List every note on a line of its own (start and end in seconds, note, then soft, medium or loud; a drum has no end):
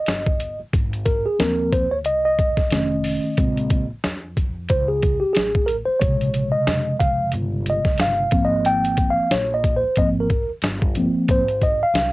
0.00 0.60 D#5 medium
0.07 0.57 G1 medium
0.07 snare loud
0.07 closed hi-hat medium
0.27 kick medium
0.40 closed hi-hat medium
0.60 muted upright bass stroke soft
0.73 1.23 G#1 loud
0.73 kick loud
0.73 closed hi-hat medium
0.93 closed hi-hat soft
1.05 1.26 A#4 medium
1.05 kick medium
1.05 closed hi-hat medium
1.25 1.40 G#4 medium
1.25 muted upright bass stroke soft
1.39 2.05 D#2 medium
1.39 1.85 F3 medium
1.39 1.85 A#3 soft
1.39 1.86 C4 medium
1.39 1.74 A#4 medium
1.39 snare loud
1.39 closed hi-hat medium
1.73 1.92 C5 medium
1.73 kick medium
1.73 closed hi-hat medium
1.91 1.98 C#5 medium
2.04 2.55 C2 medium
2.04 2.24 D#5 loud
2.04 closed hi-hat medium
2.25 3.86 D#5 medium
2.39 kick medium
2.39 closed hi-hat medium
2.57 muted upright bass stroke soft
2.57 kick medium
2.57 snare soft
2.71 3.21 F1 medium
2.71 3.34 D#3 medium
2.71 3.34 A3 medium
2.71 3.35 C#4 medium
2.71 snare loud
2.71 closed hi-hat medium
3.04 open hi-hat soft
3.24 muted upright bass stroke soft
3.37 3.87 A#1 loud
3.37 3.83 C#3 medium
3.37 3.84 G#3 soft
3.37 3.84 C4 medium
3.37 kick loud
3.37 closed hi-hat medium
3.57 closed hi-hat soft
3.70 kick medium
3.70 closed hi-hat medium
3.90 muted upright bass stroke soft
4.04 4.67 F2 medium
4.04 snare loud
4.04 closed hi-hat medium
4.37 kick medium
4.37 closed hi-hat medium
4.68 5.19 C#2 medium
4.68 4.87 C5 medium
4.68 kick medium
4.68 closed hi-hat medium
4.88 5.22 G#4 medium
5.02 kick medium
5.02 closed hi-hat medium
5.20 5.35 G4 medium
5.20 muted upright bass stroke soft
5.33 5.85 A1 medium
5.33 5.68 G#4 medium
5.33 snare loud
5.33 closed hi-hat medium
5.55 kick medium
5.66 5.75 A#4 medium
5.66 closed hi-hat medium
5.85 5.99 C5 medium
5.85 muted upright bass stroke soft
5.99 6.51 A#1 medium
5.99 8.28 C3 medium
5.99 8.28 C#3 medium
5.99 8.28 G#3 soft
5.99 6.49 C#5 medium
5.99 kick loud
5.99 closed hi-hat loud
6.21 closed hi-hat medium
6.34 closed hi-hat medium
6.52 6.96 D#5 medium
6.52 muted upright bass stroke soft
6.67 7.30 F2 medium
6.67 snare loud
6.67 closed hi-hat medium
7.00 7.31 F5 medium
7.00 kick medium
7.00 closed hi-hat medium
7.32 7.83 G1 loud
7.32 closed hi-hat medium
7.66 8.02 D#5 medium
7.66 closed hi-hat medium
7.85 muted upright bass stroke soft
7.85 kick medium
7.85 snare soft
7.98 8.31 G1 medium
7.98 8.45 F5 loud
7.98 snare loud
7.98 closed hi-hat medium
8.31 9.13 G#1 medium
8.31 9.27 F3 medium
8.31 9.27 A#3 medium
8.31 9.28 C4 medium
8.31 kick loud
8.31 closed hi-hat medium
8.45 8.67 D#5 loud
8.65 9.11 G5 loud
8.65 closed hi-hat loud
8.85 closed hi-hat medium
8.97 kick medium
8.97 closed hi-hat medium
9.11 9.33 F5 loud
9.17 muted upright bass stroke soft
9.31 9.80 A#1 loud
9.31 9.54 C#5 medium
9.31 snare loud
9.31 closed hi-hat medium
9.54 9.76 D#5 medium
9.64 kick medium
9.64 closed hi-hat medium
9.77 9.98 C5 medium
9.83 muted upright bass stroke soft
9.96 10.46 G#1 loud
9.96 10.27 F3 medium
9.96 10.28 A#3 soft
9.96 10.28 C4 medium
9.96 10.08 D#5 medium
9.96 kick medium
9.96 closed hi-hat medium
10.20 10.50 A#4 medium
10.30 kick medium
10.30 closed hi-hat medium
10.49 muted upright bass stroke medium
10.62 11.12 G1 loud
10.62 snare loud
10.62 closed hi-hat medium
10.82 kick medium
10.95 11.42 F3 medium
10.95 11.43 A#3 medium
10.95 11.43 C4 medium
10.95 closed hi-hat medium
11.14 muted upright bass stroke soft
11.28 11.78 G#1 loud
11.28 11.64 C5 loud
11.28 kick loud
11.28 closed hi-hat loud
11.48 closed hi-hat medium
11.61 11.82 D#5 medium
11.61 kick medium
11.61 closed hi-hat medium
11.80 12.13 F5 loud
11.80 muted upright bass stroke soft
11.94 12.13 C2 medium
11.94 snare loud
11.94 closed hi-hat medium